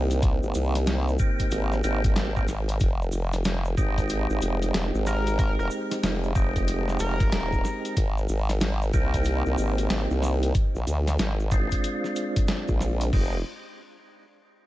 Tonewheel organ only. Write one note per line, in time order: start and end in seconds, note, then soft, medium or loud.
0.00 1.17 A#3 loud
0.00 1.17 C4 loud
0.00 1.17 D#4 medium
0.00 1.17 G4 loud
1.19 1.82 A#3 loud
1.19 1.82 C4 medium
1.19 1.82 D#4 medium
1.19 1.82 G4 loud
1.84 2.32 A#3 medium
1.84 2.32 C4 medium
1.84 2.32 D#4 medium
1.84 2.32 G4 loud
2.36 2.47 A#3 medium
2.36 2.47 C4 medium
2.36 2.47 D#4 medium
2.36 2.47 G4 medium
3.77 6.33 G#3 loud
3.77 6.33 C4 medium
3.77 6.33 D#4 medium
3.77 6.33 G4 loud
6.36 7.95 G#3 loud
6.36 7.95 C4 medium
6.36 7.95 D#4 medium
6.36 7.95 G4 loud
8.93 10.53 A#3 loud
8.93 10.53 C4 medium
8.93 10.53 D#4 loud
8.93 10.53 G4 loud
11.52 13.12 G#3 loud
11.52 13.11 C4 medium
11.52 13.12 D4 medium
11.52 13.11 F4 loud
13.13 13.39 G#3 medium
13.13 13.39 C4 medium
13.13 13.39 D#4 medium
13.13 13.39 G4 medium